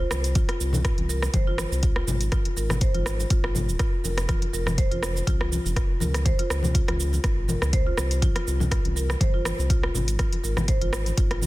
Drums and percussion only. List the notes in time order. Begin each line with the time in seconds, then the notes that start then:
0.11 cross-stick, muted conga, shaker
0.24 closed hi-hat, shaker
0.35 kick, closed hi-hat, high conga, shaker
0.48 cross-stick, closed hi-hat, muted conga
0.61 shaker
0.73 high conga, low conga, shaker
0.85 kick, cross-stick, closed hi-hat, shaker
0.98 closed hi-hat, high conga
1.10 shaker
1.22 cross-stick, muted conga, shaker
1.34 kick, closed hi-hat, high conga, shaker
1.58 cross-stick, high conga, shaker
1.72 muted conga, shaker
1.83 kick, closed hi-hat, shaker
1.96 cross-stick
2.07 muted conga, high conga, low conga, shaker
2.21 closed hi-hat, shaker
2.32 kick, cross-stick, closed hi-hat, high conga, shaker
2.45 closed hi-hat, muted conga
2.57 shaker
2.69 cross-stick, high conga, low conga, shaker
2.81 kick, closed hi-hat, muted conga, shaker
2.95 closed hi-hat, high conga
3.06 cross-stick, shaker
3.20 muted conga, shaker
3.30 kick, closed hi-hat, shaker
3.44 cross-stick
3.55 high conga, low conga, shaker
3.69 muted conga, shaker
3.79 kick, cross-stick, closed hi-hat, shaker
4.05 muted conga, shaker
4.18 cross-stick, closed hi-hat, shaker
4.29 kick, cross-stick, closed hi-hat, high conga, shaker
4.42 closed hi-hat, muted conga
4.54 shaker
4.67 cross-stick, high conga, low conga, shaker
4.78 kick, closed hi-hat, shaker
4.91 closed hi-hat, high conga
5.03 cross-stick, shaker
5.16 muted conga, shaker
5.27 kick, closed hi-hat, high conga, shaker
5.41 cross-stick
5.52 high conga, shaker
5.65 muted conga, shaker
5.76 kick, cross-stick, closed hi-hat, shaker
6.00 muted conga, high conga, low conga, shaker
6.14 cross-stick, closed hi-hat, shaker
6.26 kick, closed hi-hat, high conga, shaker
6.39 closed hi-hat, muted conga
6.50 cross-stick, shaker
6.63 high conga, low conga, shaker
6.75 kick, closed hi-hat, shaker
6.88 cross-stick, closed hi-hat, high conga
7.00 shaker
7.13 muted conga, shaker
7.24 kick, cross-stick, closed hi-hat, shaker
7.48 high conga, low conga, shaker
7.62 cross-stick, muted conga, shaker
7.73 kick, closed hi-hat, shaker
7.97 cross-stick, muted conga, shaker
8.11 closed hi-hat, shaker
8.22 kick, closed hi-hat, high conga, shaker
8.36 cross-stick, closed hi-hat, muted conga
8.48 shaker
8.60 high conga, low conga, shaker
8.71 kick, cross-stick, closed hi-hat, shaker
8.85 closed hi-hat, high conga
8.97 shaker
9.10 cross-stick, muted conga, shaker
9.21 kick, closed hi-hat, high conga, shaker
9.45 cross-stick, high conga, shaker
9.58 muted conga, shaker
9.70 kick, closed hi-hat, shaker
9.83 cross-stick
9.94 muted conga, high conga, low conga, shaker
10.08 closed hi-hat, shaker
10.19 kick, cross-stick, closed hi-hat, high conga, shaker
10.32 closed hi-hat, muted conga
10.44 shaker
10.57 cross-stick, high conga, low conga, shaker
10.68 kick, closed hi-hat, muted conga, shaker
10.81 closed hi-hat, high conga
10.93 cross-stick, shaker
11.06 closed hi-hat, muted conga, shaker
11.18 kick, closed hi-hat, shaker
11.31 cross-stick, closed hi-hat
11.42 high conga, low conga, shaker